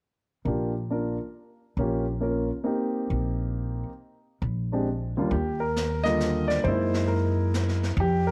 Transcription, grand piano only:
0, 0, Header, 1, 2, 480
1, 0, Start_track
1, 0, Key_signature, -3, "major"
1, 0, Tempo, 442935
1, 3, Time_signature, 3, 2, 24, 8
1, 9008, End_track
2, 0, Start_track
2, 0, Title_t, "Grand piano"
2, 0, Program_c, 0, 0
2, 485, Note_on_c, 0, 58, 42
2, 501, Note_on_c, 0, 65, 35
2, 504, Note_on_c, 0, 62, 35
2, 515, Note_on_c, 0, 67, 45
2, 766, Note_off_c, 0, 58, 0
2, 774, Note_off_c, 0, 65, 0
2, 775, Note_off_c, 0, 62, 0
2, 781, Note_off_c, 0, 67, 0
2, 980, Note_on_c, 0, 62, 36
2, 981, Note_on_c, 0, 58, 37
2, 984, Note_on_c, 0, 65, 36
2, 995, Note_on_c, 0, 70, 45
2, 1253, Note_off_c, 0, 62, 0
2, 1254, Note_off_c, 0, 58, 0
2, 1255, Note_off_c, 0, 65, 0
2, 1261, Note_off_c, 0, 70, 0
2, 1936, Note_on_c, 0, 58, 50
2, 1940, Note_on_c, 0, 61, 45
2, 1948, Note_on_c, 0, 65, 42
2, 1956, Note_on_c, 0, 67, 49
2, 2211, Note_off_c, 0, 58, 0
2, 2213, Note_off_c, 0, 61, 0
2, 2217, Note_off_c, 0, 65, 0
2, 2221, Note_off_c, 0, 67, 0
2, 2391, Note_on_c, 0, 58, 45
2, 2401, Note_on_c, 0, 61, 42
2, 2414, Note_on_c, 0, 65, 39
2, 2416, Note_on_c, 0, 70, 46
2, 2679, Note_off_c, 0, 58, 0
2, 2684, Note_off_c, 0, 61, 0
2, 2690, Note_off_c, 0, 65, 0
2, 2691, Note_off_c, 0, 70, 0
2, 2859, Note_on_c, 0, 58, 45
2, 2864, Note_on_c, 0, 60, 45
2, 2873, Note_on_c, 0, 63, 44
2, 2884, Note_on_c, 0, 67, 52
2, 4211, Note_off_c, 0, 58, 0
2, 4213, Note_off_c, 0, 60, 0
2, 4218, Note_off_c, 0, 63, 0
2, 4223, Note_off_c, 0, 67, 0
2, 5117, Note_on_c, 0, 56, 47
2, 5125, Note_on_c, 0, 62, 48
2, 5128, Note_on_c, 0, 60, 47
2, 5138, Note_on_c, 0, 67, 51
2, 5267, Note_off_c, 0, 56, 0
2, 5271, Note_off_c, 0, 62, 0
2, 5273, Note_off_c, 0, 60, 0
2, 5278, Note_off_c, 0, 67, 0
2, 5604, Note_on_c, 0, 39, 48
2, 5612, Note_on_c, 0, 58, 47
2, 5616, Note_on_c, 0, 55, 46
2, 5622, Note_on_c, 0, 62, 42
2, 5625, Note_on_c, 0, 65, 56
2, 5751, Note_off_c, 0, 39, 0
2, 5755, Note_off_c, 0, 58, 0
2, 5757, Note_off_c, 0, 55, 0
2, 5759, Note_off_c, 0, 62, 0
2, 5761, Note_off_c, 0, 65, 0
2, 5763, Note_on_c, 0, 67, 68
2, 6054, Note_off_c, 0, 67, 0
2, 6069, Note_on_c, 0, 70, 73
2, 6519, Note_off_c, 0, 70, 0
2, 6541, Note_on_c, 0, 75, 101
2, 6556, Note_on_c, 0, 55, 52
2, 6558, Note_on_c, 0, 58, 52
2, 6563, Note_on_c, 0, 50, 52
2, 6570, Note_on_c, 0, 65, 63
2, 6994, Note_off_c, 0, 75, 0
2, 7019, Note_on_c, 0, 74, 78
2, 7170, Note_off_c, 0, 55, 0
2, 7170, Note_off_c, 0, 58, 0
2, 7173, Note_off_c, 0, 50, 0
2, 7176, Note_off_c, 0, 65, 0
2, 7194, Note_on_c, 0, 72, 78
2, 7200, Note_off_c, 0, 74, 0
2, 7214, Note_on_c, 0, 56, 51
2, 7227, Note_on_c, 0, 58, 48
2, 7231, Note_on_c, 0, 63, 48
2, 7235, Note_on_c, 0, 64, 61
2, 7667, Note_on_c, 0, 70, 62
2, 7693, Note_off_c, 0, 72, 0
2, 8424, Note_off_c, 0, 70, 0
2, 8548, Note_off_c, 0, 56, 0
2, 8555, Note_off_c, 0, 58, 0
2, 8556, Note_off_c, 0, 63, 0
2, 8558, Note_off_c, 0, 64, 0
2, 8670, Note_on_c, 0, 67, 79
2, 8948, Note_off_c, 0, 67, 0
2, 8961, Note_on_c, 0, 70, 71
2, 9008, Note_off_c, 0, 70, 0
2, 9008, End_track
0, 0, End_of_file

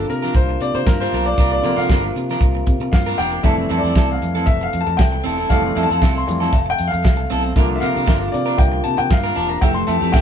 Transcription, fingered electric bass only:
0, 0, Header, 1, 2, 480
1, 0, Start_track
1, 0, Key_signature, -1, "major"
1, 0, Tempo, 515021
1, 1287, Time_signature, 4, 2, 24, 8
1, 9519, End_track
2, 0, Start_track
2, 0, Title_t, "Fingered electric bass"
2, 0, Program_c, 0, 33
2, 85, Note_on_c, 0, 48, 98
2, 271, Note_off_c, 0, 48, 0
2, 325, Note_on_c, 0, 36, 92
2, 511, Note_off_c, 0, 36, 0
2, 566, Note_on_c, 0, 48, 88
2, 665, Note_off_c, 0, 48, 0
2, 697, Note_on_c, 0, 48, 95
2, 783, Note_off_c, 0, 48, 0
2, 809, Note_on_c, 0, 43, 79
2, 994, Note_off_c, 0, 43, 0
2, 1049, Note_on_c, 0, 35, 88
2, 1234, Note_off_c, 0, 35, 0
2, 1287, Note_on_c, 0, 36, 117
2, 1472, Note_off_c, 0, 36, 0
2, 1528, Note_on_c, 0, 48, 101
2, 1626, Note_off_c, 0, 48, 0
2, 1656, Note_on_c, 0, 48, 83
2, 1770, Note_on_c, 0, 31, 95
2, 1784, Note_off_c, 0, 48, 0
2, 1954, Note_off_c, 0, 31, 0
2, 2010, Note_on_c, 0, 48, 105
2, 2194, Note_off_c, 0, 48, 0
2, 2248, Note_on_c, 0, 36, 90
2, 2433, Note_off_c, 0, 36, 0
2, 2491, Note_on_c, 0, 48, 88
2, 2588, Note_off_c, 0, 48, 0
2, 2611, Note_on_c, 0, 48, 79
2, 2700, Note_off_c, 0, 48, 0
2, 2730, Note_on_c, 0, 43, 74
2, 2914, Note_off_c, 0, 43, 0
2, 2971, Note_on_c, 0, 28, 79
2, 3155, Note_off_c, 0, 28, 0
2, 3210, Note_on_c, 0, 29, 108
2, 3394, Note_off_c, 0, 29, 0
2, 3451, Note_on_c, 0, 41, 99
2, 3548, Note_off_c, 0, 41, 0
2, 3576, Note_on_c, 0, 41, 94
2, 3663, Note_off_c, 0, 41, 0
2, 3690, Note_on_c, 0, 36, 86
2, 3874, Note_off_c, 0, 36, 0
2, 3933, Note_on_c, 0, 41, 88
2, 4168, Note_on_c, 0, 29, 93
2, 4182, Note_off_c, 0, 41, 0
2, 4353, Note_off_c, 0, 29, 0
2, 4415, Note_on_c, 0, 41, 91
2, 4511, Note_off_c, 0, 41, 0
2, 4540, Note_on_c, 0, 41, 91
2, 4625, Note_off_c, 0, 41, 0
2, 4655, Note_on_c, 0, 36, 82
2, 4837, Note_off_c, 0, 36, 0
2, 4893, Note_on_c, 0, 28, 75
2, 5077, Note_off_c, 0, 28, 0
2, 5130, Note_on_c, 0, 29, 112
2, 5315, Note_off_c, 0, 29, 0
2, 5370, Note_on_c, 0, 41, 111
2, 5468, Note_off_c, 0, 41, 0
2, 5501, Note_on_c, 0, 41, 90
2, 5586, Note_off_c, 0, 41, 0
2, 5613, Note_on_c, 0, 36, 86
2, 5797, Note_off_c, 0, 36, 0
2, 5855, Note_on_c, 0, 41, 98
2, 6038, Note_off_c, 0, 41, 0
2, 6085, Note_on_c, 0, 29, 97
2, 6272, Note_off_c, 0, 29, 0
2, 6334, Note_on_c, 0, 41, 94
2, 6430, Note_off_c, 0, 41, 0
2, 6463, Note_on_c, 0, 41, 94
2, 6547, Note_off_c, 0, 41, 0
2, 6573, Note_on_c, 0, 36, 83
2, 6756, Note_off_c, 0, 36, 0
2, 6816, Note_on_c, 0, 35, 93
2, 6998, Note_off_c, 0, 35, 0
2, 7050, Note_on_c, 0, 36, 111
2, 7235, Note_off_c, 0, 36, 0
2, 7294, Note_on_c, 0, 48, 108
2, 7390, Note_off_c, 0, 48, 0
2, 7426, Note_on_c, 0, 48, 90
2, 7509, Note_off_c, 0, 48, 0
2, 7531, Note_on_c, 0, 31, 90
2, 7715, Note_off_c, 0, 31, 0
2, 7775, Note_on_c, 0, 48, 104
2, 7958, Note_off_c, 0, 48, 0
2, 8005, Note_on_c, 0, 36, 94
2, 8192, Note_off_c, 0, 36, 0
2, 8255, Note_on_c, 0, 48, 96
2, 8351, Note_off_c, 0, 48, 0
2, 8379, Note_on_c, 0, 48, 83
2, 8465, Note_off_c, 0, 48, 0
2, 8489, Note_on_c, 0, 43, 84
2, 8674, Note_off_c, 0, 43, 0
2, 8735, Note_on_c, 0, 28, 91
2, 8917, Note_off_c, 0, 28, 0
2, 8968, Note_on_c, 0, 29, 108
2, 9153, Note_off_c, 0, 29, 0
2, 9209, Note_on_c, 0, 41, 103
2, 9307, Note_off_c, 0, 41, 0
2, 9337, Note_on_c, 0, 41, 100
2, 9423, Note_off_c, 0, 41, 0
2, 9452, Note_on_c, 0, 36, 82
2, 9519, Note_off_c, 0, 36, 0
2, 9519, End_track
0, 0, End_of_file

